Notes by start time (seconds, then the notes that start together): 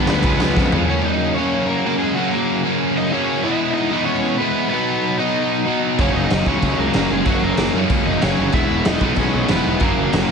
Already playing: B4
0.07 D2 G2 D3 G3 B3 D4, snare
0.13 B3 B4
0.23 C#2 C#3 F3 G#3 C#4, kick, crash
0.40 C#2 C#3 F3 G#3 C#4, snare
0.56 F2 C#3 F3 G#3 C#4, kick, snare
0.72 C#3 F3 G#3 C#4, floor tom
0.89 F#2 C#3 F#3 A#3 C#4 C#5
1.01 D#4 D#5
1.34 A#3 C#4 C#5
1.39 F#2 C#3 F#3
1.66 A#4
1.71 A#3
1.85 F#2 C#3 F#3 A#3 C#4
1.99 G#3 G#4
2.15 F#2 C#3 F#3 A#3 F#4
2.20 C#4
2.28 A#3 A#4
2.64 F#2 C#3 F#3 A#3 C#4
2.97 D#4 D#5
3.11 F#2 C#3 F#3 A#3 C#4 C#5
3.43 E3 G#3 B3 E4 E5
3.73 D#4 D#5
3.91 E3 G#3 B3 E4
4.05 C#4 C#5
4.38 E3 G#3 B3 B4
4.42 B3 E4
4.69 B2 F#3 B3 B4
4.73 B3 D#4
5.18 B2 F#3 B3 D#4 D#5
5.66 B2 F#3 B3 D#4
5.98 F#1 F#2 C#3 F#3 A#3 C#4 C#5, kick, crash
6.12 F#1 D#4 D#5
6.30 F#1, snare, crash
6.46 C#2 F#2 C#3 F#3 A#3 C#4 C#5, kick
6.63 C#2, kick, crash
6.79 C#2 A#3 A#4
6.94 F#1 F#2 C#3 F#3 A#3 C#4, snare, crash
7.11 F#1 G#3 G#4
7.25 F#1 F#2 C#3 F#3 A#3 C#4 F#4, kick, crash
7.42 F#1 A#3 A#4
7.57 F#1, snare, crash
7.73 F#2 C#3 F#3 A#3 C#4
7.78 F#2
7.90 C#2, kick, crash
8.06 F#1 D#4 D#5
8.21 F#1 F#2 C#3 F#3 A#3 C#4 C#5, snare, crash
8.39 F#1
8.52 E1 E3 G#3 B3 E4 E5, kick, crash
8.56 E4
8.70 E1
8.85 E1 D#4 D#5, snare, crash
9.01 B1 E3 G#3 B3 E4, kick
9.16 B1 C#4 C#5, kick, crash
9.34 B1
9.48 E1 E3 G#3 B3 E4 B4, snare, crash
9.66 E1
9.80 F#1 F#2 C#3 F#3 A#3 C#4 A#4, kick, crash
9.84 A#3
9.98 F#1
10.13 F#1, snare, crash
10.28 C#4